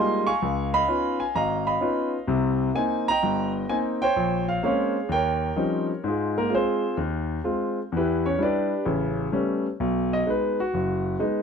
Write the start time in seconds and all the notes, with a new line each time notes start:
Already playing: G3 G#3 A#3 D#4 F4 D#5 G5 G#5 C6
0.27 F5 G#5 C#6
0.42 C#2
0.74 D#5 F5 B5
0.88 B3 C#4 D#4 F4
1.20 G#5
1.35 G#1 D#5 F5 A#5
1.67 D#5 F5 B5
1.81 B3 C#4 D#4 F4
2.27 C2 C3
2.75 A#3 C4 D#4 G#5
3.08 D#5 G5 A#5
3.22 G1 G2
3.69 A#3 C4 D#4 G#5
4.02 C5 C#5 G5
4.16 A#1
4.48 F5
4.63 G#3 A#3 C4 C#4 G#4 C#5 F5
5.09 D#2 G5
5.13 A#4 C#5
5.56 F3 G3 C4 C#4 D#4
6.04 G#2 D#4
6.08 G#3 F4 G#4
6.38 A#3 A#4
6.49 G#3 C4 F4
6.54 C4 F4 G#4 C5
6.97 D#2 D#3
7.44 G#3 C4 F4
7.92 E2
7.97 B3 E4 G4 B4
8.26 C#4 C#5
8.38 G3 D4 E4
8.43 D4 G4 B4 D5
8.85 A1 C#3
9.32 G3 A3 B3 C#4
9.80 B1
10.13 D#5
10.26 G#3 B3 D#4 B4
10.60 F#4
10.74 F#1
11.19 G#3 B3 D#4